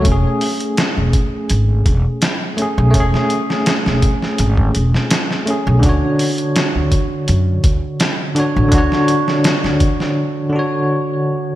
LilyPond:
<<
  \new Staff \with { instrumentName = "Tine electric piano" } { \time 4/4 \key a \major \tempo 4 = 83 <a cis' gis'>2.~ <a cis' gis'>8 <a cis' gis'>8 | <a cis' gis'>2.~ <a cis' gis'>8 <a cis' gis'>8 | <d d' fis' cis''>2.~ <d d' fis' cis''>8 <d d' fis' cis''>8 | <d d' fis' cis''>2~ <d d' fis' cis''>8 <d d' fis' cis''>4. | }
  \new Staff \with { instrumentName = "Upright bass" } { \clef bass \time 4/4 \key a \major e,,16 r4 e,,16 r8 gis,,8 e,,16 r4 b,,16 | e,,16 r4 e,,16 r8 gis,,8 e,,16 r4 b,,16 | d,16 r4 d,16 r8 fis,8 d,16 r4 a,,16 | d,16 r4 d,16 r2 r8 | }
  \new DrumStaff \with { instrumentName = "Drums" } \drummode { \time 4/4 <hh bd>8 hho16 hh16 <hh sn>8 <hh bd>8 hh8 <hh bd>8 <hh sn>8 hh8 | <hh bd>16 sn16 hh16 sn16 <hh sn>16 sn16 <hh bd>16 sn16 hh16 bd16 hh16 sn16 <hh sn>16 sn16 hh8 | <hh bd>8 hho16 hh16 <hh sn>8 <hh bd>8 hh8 <hh bd>8 <hh sn>8 hh8 | <hh bd>16 sn16 hh16 sn16 <hh sn>16 sn16 <hh bd>16 sn16 r4 r4 | }
>>